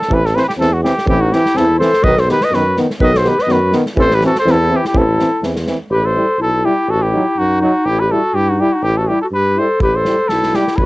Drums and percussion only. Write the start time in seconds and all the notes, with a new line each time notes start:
0.02 snare
0.11 kick
0.26 snare
0.37 snare
0.49 snare
0.61 snare
0.85 snare
0.98 snare
1.07 kick
1.33 snare
1.46 snare
1.57 snare
1.81 snare
1.93 snare
2.04 kick
2.17 snare
2.29 snare
2.41 snare
2.53 snare
2.77 snare
2.90 snare
3.00 kick
3.15 snare
3.25 snare
3.39 snare
3.49 snare
3.72 snare
3.86 snare
3.97 kick
4.11 snare
4.21 snare
4.35 snare
4.47 snare
4.85 snare
4.94 kick
5.19 snare
5.43 snare
5.56 snare
5.67 snare
9.80 kick
10.05 snare
10.29 snare
10.43 snare
10.54 snare
10.67 snare
10.78 kick